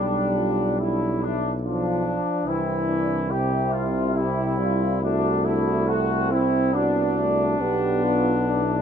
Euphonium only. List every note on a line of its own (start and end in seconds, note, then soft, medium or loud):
0.00 1.36 G3 medium
1.63 2.48 F3 medium
2.46 3.33 E3 medium
3.31 4.60 C3 medium
4.59 5.01 G3 medium
5.02 6.33 A3 medium
6.31 6.75 C4 medium
6.74 7.62 D4 medium
7.61 8.76 B3 medium